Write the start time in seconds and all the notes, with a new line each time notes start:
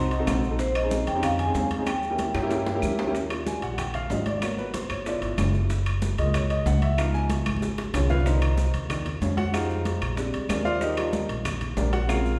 Already playing: C2 C6
0.11 D#5, high bongo, high conga, high timbale, maracas
0.19 C4 D#4 F#4 A4
0.27 A#1 F5, high bongo, low bongo, high conga, high timbale, low timbale, claves, maracas
0.35 F#5
0.43 high bongo, high conga, maracas
0.51 C4 D#4 F#4 A4
0.59 C5, high bongo, high conga, maracas
0.75 D#5, high bongo, high conga, high timbale, claves, maracas
0.83 C4 C#4 D#4 G#4
0.91 high bongo, high conga, low timbale, maracas
1.07 F2 G5, high conga, high timbale, maracas
1.15 C4 C#4 D#4 G4
1.23 F5, high bongo, high conga, low conga, high timbale, claves, maracas
1.39 G#5, high bongo, high conga, low conga, high timbale, maracas
1.46 C4 C#4 D#4 G#4
1.54 D#2, high bongo, low bongo, high conga, low timbale, maracas
1.71 high bongo, high conga, high timbale, maracas
1.78 C4 C#4 D#4 G#4
1.87 G5, high bongo, high conga, high timbale, claves, maracas
2.03 high bongo, high conga, maracas
2.10 A#3 C#4 E4 G4
2.18 high bongo, high conga, high timbale, low timbale, maracas
2.34 G2, high bongo, high conga, high timbale, claves, maracas
2.42 A#3 C#4 E4 G4
2.51 high bongo, high conga, high timbale, maracas
2.67 high bongo, high conga, low timbale, maracas
2.75 A#3 C#4 E4 G4
2.82 D#2, low bongo, high conga, claves, maracas
2.99 low bongo, high conga, low timbale, maracas
3.06 A#3 C#4 E4 G4
3.15 high bongo, high conga, maracas
3.30 G3 D4 F4, high bongo, high conga, high timbale, claves, maracas
3.46 G#5, high bongo, high conga, low timbale, maracas
3.62 A#1 F#5, high conga, high timbale, maracas
3.78 G5, high bongo, high conga, low conga, high timbale, claves, maracas
3.94 F5, high bongo, high conga, low conga, high timbale, maracas
4.10 G#1 G3 D4 F4 D#5, high bongo, low bongo, high conga, low timbale, maracas
4.26 D5, high bongo, high conga, high timbale, maracas
4.42 A#3 B3 F#4 C#5, high bongo, high conga, high timbale, claves, maracas
4.58 B4, high bongo, high conga, maracas
4.74 C5, high bongo, high conga, high timbale, low timbale, maracas
4.90 G1 C#5, high conga, high timbale, claves, maracas
5.06 A3 B3 E4 F4 D5, high bongo, high conga, maracas
5.21 G1, high bongo, high conga, high timbale, maracas
5.38 F#1, high bongo, low bongo, high conga, high timbale, low timbale, claves, maracas
5.54 high bongo, high conga, maracas
5.70 high bongo, high conga, maracas
5.86 high bongo, high conga, high timbale, claves, maracas
6.02 high bongo, high conga, low timbale, maracas
6.18 C#2 G#3 A#3 F4 D#5, high conga, high timbale, maracas
6.34 C#5, high bongo, high conga, low conga, high timbale, claves, maracas
6.50 D#5, high bongo, high conga, high timbale, maracas
6.65 C#2 F#5, high bongo, low bongo, high conga, low timbale, maracas
6.82 E5, high bongo, high conga, high timbale, maracas
6.98 F3 B3 D#4 F5, high bongo, high conga, high timbale, claves, maracas
7.14 G#5, high bongo, high conga, maracas
7.30 high bongo, high conga, high timbale, low timbale, maracas
7.46 G#1, high conga, high timbale, claves, maracas
7.56 high conga
7.62 high bongo, maracas
7.78 high bongo, high timbale, maracas
7.94 C2 C#4 F4 G#4 C#5, low bongo, high timbale, low timbale, claves, maracas
7.99 low conga
8.10 F4 B4 C#5 F5, low bongo, low conga, maracas
8.20 D5, low conga
8.25 D#3 A#3 D4 D#4 A#4 C5 D#5, high bongo, high conga, maracas
8.41 high bongo, high conga, high timbale, claves, maracas
8.57 high bongo, high conga, low timbale, maracas
8.73 D#2, high conga, high timbale, maracas
8.89 D#3 A#3 D4, high bongo, high conga, low conga, high timbale, claves, maracas
9.06 high bongo, high conga, low conga, high timbale, maracas
9.21 F2 C#4 C#5, high bongo, low bongo, high conga, low timbale, maracas
9.37 F#4 F#5, high bongo, high conga, high timbale, maracas
9.53 G#3 D#4 F4 G4 G#4 C5 F5, high bongo, high conga, high timbale, claves, maracas
9.70 high bongo, high conga, maracas
9.85 high bongo, high conga, high timbale, low timbale, maracas
10.01 A#1, high conga, high timbale, claves, maracas
10.16 G3 G#3 C4 D4, high bongo, high conga, maracas
10.33 D2, high bongo, high conga, high timbale, maracas
10.49 D#2 D4 G#4 A#4 D5, high bongo, low bongo, high conga, high timbale, low timbale, claves, maracas
10.65 F4 C5 D5 F5, high bongo, high conga, maracas
10.81 D#4 G4 A#4 D#5, high bongo, high conga, maracas
10.96 F3 G3 D4, high bongo, high conga, high timbale, claves, maracas
11.13 high bongo, high conga, low timbale, maracas
11.29 A#1, high conga, high timbale, maracas
11.45 high bongo, high conga, low conga, high timbale, claves, maracas
11.61 high bongo, high conga, low conga, high timbale, maracas
11.77 A#1 D4 G4 A#4 D5, high bongo, low bongo, high conga, low timbale, maracas
11.93 F#4 F#5, high bongo, high conga, high timbale, maracas
12.08 C#3 G#3 C4 F4 A#4 C#5 F5, high bongo, high conga, high timbale, claves, maracas
12.25 high conga, maracas